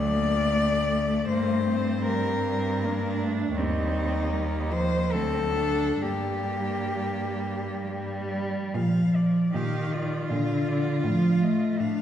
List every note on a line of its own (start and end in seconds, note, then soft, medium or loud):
0.00 1.25 D2 medium
0.00 0.15 F#3 soft
0.00 1.27 A3 medium
0.00 1.28 D5 medium
0.16 0.56 A#3 soft
0.55 2.09 A3 medium
1.28 3.52 G2 medium
1.28 1.66 A#3 medium
1.28 2.05 C5 medium
1.70 2.86 C4 soft
2.07 2.46 G3 soft
2.07 3.18 A#4 medium
2.47 2.85 G3 soft
2.84 3.20 A#3 medium
2.84 3.58 D4 medium
3.21 3.58 A3 medium
3.55 5.15 D#2 medium
3.55 4.30 G3 soft
3.55 4.33 C4 medium
3.55 4.74 D#4 medium
4.31 4.71 G3 soft
4.31 5.14 A#3 soft
4.70 5.14 F3 soft
4.70 5.13 C5 medium
5.12 6.02 D2 soft
5.12 6.02 F#3 soft
5.12 5.54 C4 soft
5.12 6.03 A4 medium
5.54 6.04 D4 medium
6.02 8.49 G2 soft
6.02 7.83 G3 soft
6.02 8.53 A#3 soft
6.02 8.31 G4 medium
7.87 8.77 G3 medium
8.74 9.42 A#2 soft
8.74 9.53 F3 medium
8.74 9.17 F5 soft
9.16 9.58 D5 soft
9.53 10.19 A#2 soft
9.53 10.31 D#3 medium
9.53 9.94 G4 soft
9.53 9.96 F5 soft
9.93 11.80 F4 soft
9.93 10.30 D5 soft
10.30 10.93 A#2 soft
10.30 11.04 D3 medium
10.30 10.70 F5 soft
10.69 11.05 D5 soft
11.04 11.68 A2 medium
11.04 11.43 F3 medium
11.04 11.45 F5 soft
11.41 12.02 A3 medium
11.41 11.82 D#5 soft
11.79 12.02 A2 soft
11.79 12.02 D4 soft
11.79 12.02 F5 soft